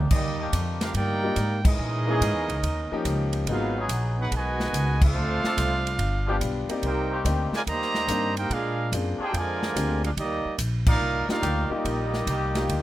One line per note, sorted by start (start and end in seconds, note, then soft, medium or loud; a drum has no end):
0.00 0.11 A#3 medium
0.00 0.10 D4 medium
0.00 0.10 D#4 medium
0.00 0.11 G4 loud
0.11 0.52 D#2 medium
0.11 0.51 G3 medium
0.11 0.50 A#3 medium
0.11 0.50 D#4 medium
0.11 0.50 G4 medium
0.11 0.50 D5 medium
0.11 0.50 D#5 medium
0.11 kick medium
0.11 crash medium
0.38 0.92 D#3 medium
0.38 0.91 A#3 medium
0.38 0.92 D4 medium
0.38 0.92 G4 loud
0.53 0.93 F2 loud
0.53 kick soft
0.53 hi-hat pedal medium
0.53 ride medium
0.80 0.95 D4 medium
0.80 0.93 F4 medium
0.80 0.95 G4 medium
0.80 0.95 A#4 medium
0.80 0.95 F5 medium
0.80 snare medium
0.80 ride medium
0.94 1.35 G2 medium
0.94 1.61 A#3 medium
0.94 1.61 D#4 medium
0.94 1.62 D#4 medium
0.94 1.61 G4 medium
0.94 1.62 A#4 medium
0.94 1.62 D5 medium
0.94 1.62 G5 loud
0.94 kick soft
0.94 ride medium
1.23 1.35 G3 medium
1.23 1.36 A#3 medium
1.23 1.36 D4 medium
1.23 1.36 D#4 medium
1.23 1.36 F4 medium
1.36 1.77 G#2 loud
1.36 kick soft
1.36 hi-hat pedal medium
1.36 ride medium
1.63 2.58 E3 medium
1.63 2.58 G#3 medium
1.63 3.28 D#4 medium
1.63 kick loud
1.63 crash medium
1.67 3.30 C#4 medium
1.67 2.60 G#4 medium
1.67 3.30 A#4 medium
1.67 3.30 D#5 loud
1.79 2.20 A#2 loud
2.07 2.60 E3 loud
2.07 2.20 G#3 medium
2.07 2.60 A#3 loud
2.07 2.20 A#3 medium
2.07 2.60 C#4 medium
2.07 2.20 C#4 medium
2.07 2.20 E4 medium
2.07 2.60 G#4 loud
2.07 2.20 G#4 medium
2.21 2.34 G#2 loud
2.21 kick soft
2.21 hi-hat pedal medium
2.21 ride medium
2.34 2.48 E2 medium
2.48 2.62 C#2 medium
2.48 ride medium
2.63 2.89 D#2 loud
2.63 kick soft
2.63 ride medium
2.91 3.45 F3 medium
2.91 3.45 A#3 medium
2.91 3.45 C#4 medium
2.91 3.45 D#4 medium
2.91 3.45 G4 loud
2.91 muted upright bass stroke soft
3.05 3.45 C#2 loud
3.05 kick soft
3.05 hi-hat pedal medium
3.05 ride medium
3.33 ride medium
3.47 3.88 G#1 medium
3.47 3.73 F#3 medium
3.47 3.87 F#3 medium
3.47 3.73 A#3 medium
3.47 3.87 B3 medium
3.47 3.73 B3 medium
3.47 3.73 D#4 medium
3.47 3.87 F4 medium
3.47 3.74 G#4 medium
3.47 kick soft
3.47 ride medium
3.51 3.88 D#4 medium
3.51 3.88 G#4 medium
3.51 3.88 B4 medium
3.51 3.88 F5 loud
3.78 4.30 F#3 loud
3.78 4.30 B3 medium
3.78 4.29 D#4 medium
3.78 4.30 G#4 loud
3.89 4.29 A#1 loud
3.89 kick soft
3.89 hi-hat pedal medium
3.89 ride medium
4.17 4.30 B3 medium
4.17 4.30 D#4 medium
4.17 4.32 D#4 medium
4.17 4.30 F#4 medium
4.17 4.32 G#4 medium
4.17 4.32 B4 medium
4.17 4.32 F#5 medium
4.32 4.72 B1 medium
4.32 5.02 B2 medium
4.32 5.02 D#3 medium
4.32 5.02 G#3 medium
4.32 kick soft
4.32 ride medium
4.36 5.03 F#4 loud
4.36 5.03 B4 loud
4.36 5.03 D#5 medium
4.36 5.04 G#5 loud
4.60 snare medium
4.73 5.14 C#2 loud
4.73 kick soft
4.73 hi-hat pedal medium
4.73 ride medium
5.01 5.96 A3 loud
5.01 5.96 C4 medium
5.01 6.66 D4 medium
5.01 6.66 F4 loud
5.01 5.96 A4 medium
5.01 5.96 C5 medium
5.01 6.66 F5 loud
5.01 kick loud
5.01 crash medium
5.15 5.41 D2 loud
5.43 5.53 F3 loud
5.43 5.54 C4 medium
5.43 5.54 D4 medium
5.43 5.54 A4 loud
5.43 muted upright bass stroke soft
5.43 snare medium
5.57 5.98 C2 loud
5.57 kick soft
5.57 hi-hat pedal medium
5.57 ride medium
5.87 ride medium
5.99 6.39 G1 medium
5.99 kick soft
5.99 ride medium
6.26 6.36 F3 medium
6.26 6.66 G3 medium
6.26 6.35 B3 medium
6.26 6.67 B3 medium
6.26 6.36 D4 medium
6.26 6.67 D4 medium
6.26 6.67 F4 medium
6.26 6.35 G4 loud
6.30 6.67 G4 medium
6.41 6.67 B1 loud
6.41 kick soft
6.41 hi-hat pedal medium
6.41 ride medium
6.69 7.22 A#3 medium
6.69 7.22 C4 medium
6.69 7.23 D#4 medium
6.69 7.23 G4 medium
6.69 7.22 D5 medium
6.69 muted upright bass stroke soft
6.69 ride medium
6.82 7.23 C2 medium
6.82 7.22 A#3 medium
6.82 7.22 D#4 medium
6.82 7.23 D#4 medium
6.82 7.22 G4 medium
6.82 7.23 C5 medium
6.82 7.23 G5 medium
6.82 kick soft
6.82 ride medium
6.86 7.23 A#4 medium
7.11 7.64 D#3 loud
7.11 7.64 A#3 medium
7.11 7.64 C4 loud
7.11 7.64 G4 loud
7.24 7.50 D2 loud
7.24 7.50 A#3 medium
7.24 7.50 C4 medium
7.24 7.50 D4 medium
7.24 7.50 D#4 medium
7.24 7.50 G4 medium
7.24 kick soft
7.24 hi-hat pedal medium
7.24 ride medium
7.51 7.59 G#3 medium
7.51 muted upright bass stroke soft
7.51 snare medium
7.56 7.61 F4 medium
7.56 7.61 A#4 medium
7.56 7.62 D5 loud
7.56 7.61 G#5 loud
7.67 8.07 D#2 medium
7.67 8.33 D#3 loud
7.67 8.33 G3 medium
7.67 8.33 A#3 loud
7.67 8.34 G4 loud
7.67 8.33 C5 loud
7.67 8.33 D#5 loud
7.67 8.34 A#5 loud
7.67 kick soft
7.67 ride medium
7.82 snare soft
7.95 snare medium
8.08 8.49 G2 loud
8.08 8.33 A#3 medium
8.08 8.33 C4 medium
8.08 8.34 D4 medium
8.08 8.34 D#4 medium
8.08 8.34 A#4 medium
8.08 kick soft
8.08 hi-hat pedal medium
8.08 ride medium
8.37 8.51 A#3 medium
8.37 8.51 D#4 medium
8.37 8.51 G4 loud
8.37 8.51 A#4 medium
8.37 8.51 C5 medium
8.37 8.51 G5 loud
8.37 ride medium
8.50 8.91 A#2 medium
8.50 8.93 G#3 medium
8.50 8.93 D4 medium
8.50 8.93 F4 medium
8.50 8.93 G#4 medium
8.50 8.94 A#4 medium
8.50 8.93 F5 loud
8.50 kick soft
8.50 ride medium
8.92 9.18 F#2 loud
8.92 9.17 A#3 medium
8.92 9.18 C4 medium
8.92 9.18 D4 medium
8.92 9.18 F4 medium
8.92 9.18 G#4 medium
8.92 kick soft
8.92 hi-hat pedal medium
8.92 ride medium
9.18 9.73 F3 loud
9.18 9.72 A#3 loud
9.18 9.72 D4 loud
9.18 9.33 G4 medium
9.18 9.72 G#4 loud
9.18 muted upright bass stroke soft
9.23 9.34 D#4 medium
9.23 9.34 G#4 medium
9.23 9.34 C5 medium
9.23 9.35 G5 medium
9.32 9.74 F2 medium
9.32 10.03 D3 loud
9.32 10.03 F3 loud
9.32 10.03 G#3 medium
9.32 kick soft
9.32 ride medium
9.38 10.06 F4 loud
9.38 10.03 A#4 loud
9.38 10.06 D5 loud
9.38 10.06 G#5 loud
9.62 snare medium
9.75 10.16 D2 loud
9.75 10.00 A#3 medium
9.75 10.00 C4 medium
9.75 10.01 D4 medium
9.75 10.01 F4 medium
9.75 10.01 G4 medium
9.75 kick soft
9.75 hi-hat pedal medium
9.75 ride medium
10.03 10.10 G#3 medium
10.03 10.09 D4 medium
10.03 10.11 D4 medium
10.03 10.11 F4 medium
10.03 10.11 G#4 medium
10.03 10.10 A#4 medium
10.03 10.11 F5 medium
10.03 ride medium
10.17 10.43 D#2 loud
10.17 10.57 G3 medium
10.17 10.57 A#3 medium
10.17 10.56 D#4 medium
10.17 10.57 G4 medium
10.17 10.57 D5 medium
10.17 10.57 D#5 loud
10.17 kick soft
10.17 ride medium
10.45 muted upright bass stroke soft
10.58 10.99 A#1 loud
10.58 kick soft
10.58 hi-hat pedal medium
10.58 ride medium
10.86 11.26 A#3 medium
10.86 11.27 D#4 medium
10.86 11.26 F4 medium
10.86 11.27 A#4 medium
10.86 11.27 D5 medium
10.86 11.27 F5 loud
10.86 kick loud
10.86 crash loud
11.00 11.26 C2 medium
11.28 11.41 A#3 medium
11.28 11.68 A#3 medium
11.28 11.41 D4 medium
11.28 11.68 D#4 medium
11.28 11.42 D#4 medium
11.28 11.69 D#4 medium
11.28 11.68 F4 medium
11.28 11.42 F4 medium
11.28 11.42 G4 medium
11.28 11.68 A#4 medium
11.28 11.69 D5 medium
11.28 11.68 F5 loud
11.28 muted upright bass stroke soft
11.28 snare medium
11.41 11.69 D2 loud
11.41 12.07 D#3 medium
11.41 12.06 A#3 loud
11.41 12.07 G4 loud
11.41 kick soft
11.41 hi-hat pedal medium
11.41 ride medium
11.70 12.82 G3 medium
11.70 12.23 A#3 medium
11.70 12.82 A#3 medium
11.70 12.24 D#4 medium
11.70 12.82 D#4 medium
11.70 12.24 F4 medium
11.70 12.24 G4 medium
11.70 12.82 G4 medium
11.70 12.82 D#5 medium
11.70 muted upright bass stroke soft
11.74 12.82 D5 medium
11.85 12.25 A#1 loud
11.85 kick soft
11.85 ride medium
12.13 snare medium
12.27 12.67 C2 loud
12.27 12.82 D#3 medium
12.27 12.82 A#3 medium
12.27 12.82 G4 loud
12.27 kick soft
12.27 hi-hat pedal medium
12.27 ride medium
12.55 12.82 A#3 medium
12.55 12.82 D#4 medium
12.55 12.82 F4 medium
12.55 12.82 G4 medium
12.55 snare medium
12.55 ride medium
12.68 12.82 D2 medium
12.68 kick soft
12.68 ride medium